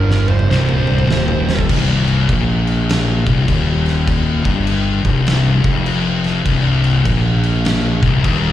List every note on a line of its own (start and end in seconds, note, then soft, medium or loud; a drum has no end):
0.00 0.47 G1 medium
0.00 0.50 G2 loud
0.00 0.30 A#4 loud
0.11 snare medium
0.28 0.49 C5 medium
0.28 mid tom medium
0.39 mid tom medium
0.50 1.06 C1 medium
0.50 1.09 C2 loud
0.50 1.66 C5 loud
0.50 snare loud
0.69 mid tom medium
0.87 mid tom loud
0.99 mid tom medium
1.10 1.66 D#1 medium
1.10 1.69 D#2 loud
1.10 snare loud
1.28 floor tom loud
1.49 snare loud
1.59 kick loud
1.69 2.25 C1 medium
1.69 2.28 C2 loud
1.69 kick loud
1.69 crash loud
2.08 crash medium
2.28 3.22 A#1 medium
2.28 3.25 A#2 loud
2.28 kick loud
2.28 crash medium
2.67 crash medium
2.89 snare loud
2.89 crash loud
3.26 3.47 C1 loud
3.26 3.47 C2 loud
3.26 kick loud
3.26 crash medium
3.48 4.41 D#1 loud
3.48 4.44 D#2 loud
3.48 kick loud
3.48 crash loud
3.86 snare soft
3.86 crash medium
4.07 kick loud
4.07 crash medium
4.45 5.00 G1 loud
4.45 5.03 G2 loud
4.45 kick loud
4.45 crash medium
4.67 crash loud
5.05 5.60 C1 loud
5.05 5.63 C2 medium
5.05 kick loud
5.05 crash medium
5.26 snare loud
5.26 crash medium
5.63 6.41 F1 loud
5.63 6.44 F2 loud
5.63 kick loud
5.63 crash medium
5.86 crash loud
6.24 snare soft
6.24 crash medium
6.45 7.01 C1 medium
6.45 7.04 C2 loud
6.45 kick loud
6.45 crash loud
6.84 crash medium
7.05 7.98 A#1 medium
7.05 8.01 A#2 loud
7.05 kick loud
7.05 crash loud
7.43 crash medium
7.65 snare loud
7.65 crash loud
8.02 8.23 C1 loud
8.02 8.23 C2 loud
8.02 kick loud
8.02 crash medium
8.23 8.52 D#1 loud
8.23 8.52 D#2 loud
8.23 kick loud
8.23 crash loud